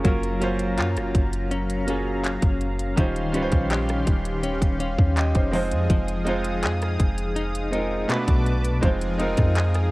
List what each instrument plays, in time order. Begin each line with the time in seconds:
Already playing: clean electric guitar C#4 G#4
0.03 808-style bass F#1, grand piano F#3 A#3 C#4 F4 A#4, clean electric guitar F#3, analog synth pad F#3 F5 A#5, kick, closed hi-hat
0.23 closed hi-hat
0.40 grand piano F#3 A#3 C#4 F4 C5, clean electric guitar C#4, closed hi-hat
0.59 closed hi-hat
0.77 808-style bass F#2, clean electric guitar F4, clap, closed hi-hat
0.96 808-style bass F#1, cross-stick, closed hi-hat
1.15 808-style bass F#1, kick, closed hi-hat
1.33 closed hi-hat
1.51 clean electric guitar C#4, closed hi-hat
1.70 closed hi-hat
1.86 grand piano F#3 A#3 C#4 F4 G#4, clean electric guitar C#4, closed hi-hat
2.24 clap, closed hi-hat
2.42 808-style bass F#1, kick, closed hi-hat
2.61 closed hi-hat
2.79 closed hi-hat
2.96 808-style bass D#1, clean electric guitar D#3, grand piano G3 C#4 D#4 F4 C5, analog synth pad C#4 G4 C6, kick, closed hi-hat
3.16 closed hi-hat
3.32 808-style bass C#1, grand piano G3 C#4 D#4 F4 B4, clean electric guitar C#4, closed hi-hat
3.42 grand piano C5
3.52 808-style bass A#1, kick, closed hi-hat
3.70 clean electric guitar G4, clap, closed hi-hat
3.89 cross-stick, closed hi-hat
4.07 808-style bass D#1, kick, closed hi-hat
4.25 closed hi-hat
4.43 clean electric guitar C#4, closed hi-hat
4.62 808-style bass D#1, kick, closed hi-hat
4.80 clean electric guitar C#4, grand piano F5, closed hi-hat
4.98 808-style bass D#2, kick
5.17 grand piano G4 D#5 G5, clap, closed hi-hat
5.35 808-style bass F1, grand piano D#4 C5, kick, closed hi-hat
5.52 clean electric guitar F3, grand piano G#3 C4 D#4 F4 C5 D#5, analog synth pad G#4 D#6, closed hi-hat, open hi-hat
5.72 808-style bass F2, closed hi-hat
5.90 808-style bass F1, clean electric guitar F3, kick, closed hi-hat
6.08 closed hi-hat
6.25 grand piano G#3 C4 D#4 F4 C5, clean electric guitar D#4, closed hi-hat
6.45 closed hi-hat
6.63 808-style bass F2, clean electric guitar G#4, clap, closed hi-hat
6.82 cross-stick, closed hi-hat
7.00 808-style bass F1, kick, closed hi-hat
7.18 closed hi-hat
7.36 clean electric guitar D#4, closed hi-hat
7.55 closed hi-hat
7.71 grand piano G#3 C4 D#4 F4 A#4, clean electric guitar D#4, closed hi-hat
8.08 clean electric guitar B2, grand piano A3 B3 C#4 F#4 B4, analog synth pad B4 A5 D6, clap, closed hi-hat
8.16 grand piano D4
8.28 808-style bass B1, kick, closed hi-hat
8.46 closed hi-hat
8.65 closed hi-hat
8.81 808-style bass F1, clean electric guitar F3, grand piano G#3 C4 D#4 F4 C5, analog synth pad G#4 F5 D#6, kick, closed hi-hat
9.01 closed hi-hat
9.18 grand piano G#3 C4 D#4 F4 A#4, clean electric guitar D#4, closed hi-hat
9.37 808-style bass F2, kick, cross-stick, closed hi-hat
9.55 clean electric guitar G#4, clap, closed hi-hat
9.74 cross-stick, closed hi-hat